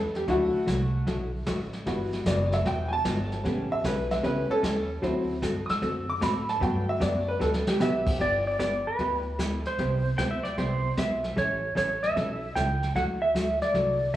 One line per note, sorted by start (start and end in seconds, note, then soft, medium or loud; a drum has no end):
0.00 0.27 E2 medium
0.00 0.15 A4 medium
0.15 0.28 G4 medium
0.15 snare soft
0.28 0.52 D2 loud
0.28 0.51 D3 soft
0.28 0.58 F#3 medium
0.28 0.51 F#3 medium
0.28 0.51 A3 medium
0.28 1.04 A3 medium
0.28 0.58 D4 soft
0.28 0.51 E4 medium
0.28 0.59 E4 medium
0.28 0.51 F#4 medium
0.28 1.06 F#4 loud
0.28 brush sweep medium
0.28 kick soft
0.28 snare soft
0.54 muted upright bass stroke soft
0.66 1.06 C2 loud
0.66 0.79 D3 medium
0.66 0.79 F#3 medium
0.66 0.80 A3 medium
0.66 0.80 E4 medium
0.66 0.80 F#4 medium
0.66 kick soft
0.66 snare medium
0.66 hi-hat pedal medium
1.07 1.45 B1 medium
1.07 1.30 D3 medium
1.07 1.30 F#3 medium
1.07 1.30 A3 medium
1.07 1.30 E4 medium
1.07 1.30 F#4 medium
1.07 brush sweep medium
1.07 kick soft
1.07 snare medium
1.46 1.85 A1 medium
1.46 1.59 D3 medium
1.46 1.59 F#3 medium
1.46 1.59 A3 medium
1.46 1.59 E4 medium
1.46 1.59 F#4 medium
1.46 kick soft
1.46 snare medium
1.46 hi-hat pedal medium
1.73 snare soft
1.86 2.25 G1 medium
1.86 2.09 E3 medium
1.86 3.40 G3 medium
1.86 2.09 G3 medium
1.86 2.10 B3 medium
1.86 3.41 E4 soft
1.86 3.41 F#4 medium
1.86 2.10 F#4 medium
1.86 brush sweep medium
1.86 kick soft
1.86 snare medium
2.13 snare soft
2.26 2.64 F#1 loud
2.26 2.39 E3 medium
2.26 2.38 G3 medium
2.26 2.39 B3 medium
2.26 2.39 F#4 medium
2.26 2.52 D5 medium
2.26 kick soft
2.26 snare medium
2.26 hi-hat pedal medium
2.52 2.66 E5 medium
2.52 snare soft
2.65 3.04 E1 medium
2.65 2.88 E3 soft
2.65 2.88 G3 medium
2.65 2.89 B3 medium
2.65 2.89 F#4 medium
2.65 2.92 G5 medium
2.65 brush sweep soft
2.65 kick soft
2.65 snare medium
2.88 2.90 G#5 medium
2.93 3.69 A5 loud
3.05 3.43 G1 loud
3.05 3.17 E3 medium
3.05 3.17 G3 medium
3.05 3.17 B3 medium
3.05 3.18 F#4 medium
3.05 kick soft
3.05 snare medium
3.05 hi-hat pedal medium
3.32 snare soft
3.43 3.83 A1 medium
3.43 3.68 C#3 medium
3.43 3.68 E3 medium
3.43 4.21 G3 medium
3.43 3.68 A3 medium
3.43 4.22 B3 medium
3.43 4.22 C#4 medium
3.43 3.68 C#4 medium
3.43 3.68 G4 medium
3.43 brush sweep soft
3.43 kick soft
3.43 snare soft
3.72 3.84 E5 loud
3.84 4.23 B1 loud
3.84 3.96 C#3 medium
3.84 3.96 E3 medium
3.84 3.97 A3 medium
3.84 3.97 C#4 medium
3.84 3.97 G4 medium
3.84 4.10 B4 medium
3.84 kick soft
3.84 snare medium
3.84 hi-hat pedal medium
4.11 4.24 E5 medium
4.11 snare medium
4.23 4.48 C#2 medium
4.23 4.46 C#3 medium
4.23 4.46 E3 medium
4.23 4.47 G3 medium
4.23 4.46 A3 medium
4.23 4.47 B3 soft
4.23 4.47 C#4 medium
4.23 4.46 C#4 medium
4.23 4.47 G4 medium
4.23 4.50 B4 loud
4.23 brush sweep medium
4.23 kick soft
4.23 snare medium
4.50 4.87 C#4 loud
4.50 4.89 A4 loud
4.50 muted upright bass stroke soft
4.63 5.02 D#2 medium
4.63 4.75 C#3 medium
4.63 4.75 E3 medium
4.63 4.75 A3 medium
4.63 4.76 C#4 medium
4.63 4.76 G4 medium
4.63 kick soft
4.63 snare medium
4.63 hi-hat pedal medium
5.02 5.41 D2 medium
5.02 5.25 D3 medium
5.02 5.32 F#3 medium
5.02 5.25 A3 medium
5.02 5.26 C4 medium
5.02 5.33 C4 soft
5.02 5.33 E4 medium
5.02 5.26 F#4 medium
5.02 5.26 A4 medium
5.02 brush sweep medium
5.02 kick soft
5.02 snare medium
5.42 5.67 G2 medium
5.42 5.54 D3 medium
5.42 5.54 A3 medium
5.42 5.55 C4 medium
5.42 5.55 F#4 medium
5.42 5.55 A4 medium
5.42 kick soft
5.42 snare medium
5.42 hi-hat pedal medium
5.66 5.68 D#6 medium
5.66 muted upright bass stroke soft
5.66 snare medium
5.70 6.08 E6 loud
5.82 6.21 F#2 medium
5.82 6.05 D3 medium
5.82 6.05 A3 medium
5.82 6.05 C4 medium
5.82 6.05 F#4 medium
5.82 6.05 A4 medium
5.82 brush sweep medium
5.82 kick soft
5.82 snare soft
6.10 6.22 D6 loud
6.21 6.60 A2 loud
6.21 6.33 D3 medium
6.21 6.34 A3 medium
6.21 6.34 C4 medium
6.21 6.34 F#4 medium
6.21 6.34 A4 medium
6.21 6.48 B5 medium
6.21 kick soft
6.21 snare medium
6.21 hi-hat pedal medium
6.49 6.62 A5 medium
6.49 snare soft
6.60 7.00 G2 medium
6.60 6.84 D3 medium
6.60 6.84 F#3 medium
6.60 7.24 A3 medium
6.60 6.84 B3 medium
6.60 7.24 B3 medium
6.60 6.84 D4 medium
6.60 7.25 F#4 medium
6.60 6.84 G4 medium
6.60 6.88 G5 medium
6.60 brush sweep medium
6.60 kick soft
6.60 snare soft
6.89 7.01 E5 medium
7.00 7.39 F#2 loud
7.00 7.12 D3 medium
7.00 7.13 F#3 medium
7.00 7.13 B3 medium
7.00 7.13 D4 medium
7.00 7.13 G4 medium
7.00 7.27 D5 medium
7.00 kick soft
7.00 snare medium
7.00 hi-hat pedal medium
7.28 7.41 B4 medium
7.40 7.79 D2 medium
7.40 7.63 D3 medium
7.40 7.63 F#3 medium
7.40 7.63 B3 soft
7.40 7.63 D4 medium
7.40 7.63 G4 medium
7.40 7.67 A4 medium
7.40 snare medium
7.54 snare medium
7.67 7.79 G4 loud
7.67 snare loud
7.80 8.19 B1 loud
7.80 7.92 D3 medium
7.80 7.92 F#3 medium
7.80 8.17 B3 medium
7.80 7.92 B3 medium
7.80 7.93 D4 medium
7.80 8.19 G4 loud
7.80 7.93 G4 medium
7.80 8.21 E5 medium
7.80 snare medium
7.80 hi-hat pedal medium
8.07 kick medium
8.07 crash medium
8.20 8.83 G1 medium
8.20 8.43 G3 soft
8.20 8.43 B3 medium
8.20 8.43 E4 medium
8.20 8.43 G4 medium
8.20 8.46 D5 loud
8.20 brush sweep medium
8.20 kick soft
8.20 snare soft
8.47 8.58 D5 medium
8.59 8.71 G3 medium
8.59 8.72 B3 medium
8.59 8.72 E4 medium
8.59 8.72 G4 medium
8.59 8.87 D5 medium
8.59 kick soft
8.59 snare medium
8.59 hi-hat pedal medium
8.87 9.46 B4 medium
8.99 9.63 D2 medium
8.99 9.22 G3 soft
8.99 9.23 B3 medium
8.99 9.23 E4 medium
8.99 9.23 G4 medium
8.99 brush sweep medium
8.99 kick soft
8.99 snare medium
9.39 9.51 G3 medium
9.39 9.51 B3 medium
9.39 9.51 E4 medium
9.39 9.51 G4 medium
9.39 kick soft
9.39 snare medium
9.39 hi-hat pedal medium
9.46 9.66 A4 medium
9.65 10.81 C5 medium
9.65 snare soft
9.78 10.10 C2 medium
9.78 10.02 C3 soft
9.78 10.02 G3 medium
9.78 10.02 B3 medium
9.78 10.02 E4 medium
9.78 10.02 G4 medium
9.78 brush sweep medium
9.78 kick soft
9.78 snare soft
10.18 10.52 D2 medium
10.18 10.30 C3 medium
10.18 10.31 G3 medium
10.18 10.31 B3 medium
10.18 10.31 E4 medium
10.18 10.31 G4 medium
10.18 10.30 G5 medium
10.18 kick soft
10.18 snare medium
10.18 hi-hat pedal medium
10.31 10.44 E5 medium
10.44 10.57 D5 medium
10.44 snare soft
10.58 10.91 C2 medium
10.58 10.80 C3 soft
10.58 10.81 G3 soft
10.58 10.81 B3 medium
10.58 10.81 E4 medium
10.58 10.81 G4 medium
10.58 10.90 C5 loud
10.58 brush sweep medium
10.58 kick soft
10.58 snare soft
10.97 11.31 B1 medium
10.97 11.10 C3 medium
10.97 11.10 G3 medium
10.97 11.10 B3 medium
10.97 11.10 E4 medium
10.97 11.10 G4 medium
10.97 11.39 E5 medium
10.97 kick soft
10.97 snare medium
10.97 hi-hat pedal medium
11.24 snare soft
11.36 11.69 A1 loud
11.36 11.59 E3 medium
11.36 11.60 G3 medium
11.36 11.60 C#4 medium
11.36 11.60 E4 medium
11.36 11.60 A4 medium
11.36 11.76 C#5 loud
11.36 brush sweep soft
11.36 kick soft
11.36 snare soft
11.75 12.10 A1 medium
11.75 11.88 E3 medium
11.75 11.88 G3 medium
11.75 11.88 C#4 medium
11.75 11.89 E4 medium
11.75 11.89 A4 medium
11.75 12.04 C#5 medium
11.75 kick soft
11.75 snare medium
11.75 hi-hat pedal medium
12.03 12.52 E5 medium
12.03 snare soft
12.16 12.50 B1 medium
12.16 12.39 E3 medium
12.16 12.39 G3 medium
12.16 12.39 C#4 medium
12.16 12.39 E4 medium
12.16 12.39 A4 medium
12.16 brush sweep soft
12.16 kick soft
12.16 snare soft
12.55 12.90 C#2 loud
12.55 12.68 E3 medium
12.55 12.68 G3 medium
12.55 12.68 C#4 medium
12.55 12.68 E4 medium
12.55 12.68 A4 medium
12.55 12.95 G5 loud
12.55 kick soft
12.55 snare medium
12.55 hi-hat pedal medium
12.83 snare soft
12.95 13.59 D2 loud
12.95 13.18 D3 medium
12.95 13.18 F#3 medium
12.95 13.19 A3 medium
12.95 13.18 E4 medium
12.95 13.19 F#4 medium
12.95 13.03 F#5 loud
12.95 brush sweep soft
12.95 kick soft
12.95 snare soft
13.22 13.62 E5 medium
13.35 13.47 D3 medium
13.35 13.47 F#3 medium
13.35 13.47 A3 medium
13.35 13.48 E4 medium
13.35 13.48 F#4 medium
13.35 kick soft
13.35 snare medium
13.35 hi-hat pedal medium
13.62 14.16 D5 medium
13.62 snare soft
13.74 14.08 C2 medium
13.74 13.97 D3 medium
13.74 13.97 F#3 medium
13.74 13.98 A3 medium
13.74 13.98 E4 medium
13.74 13.98 F#4 medium
13.74 brush sweep soft
13.74 kick soft
13.74 snare medium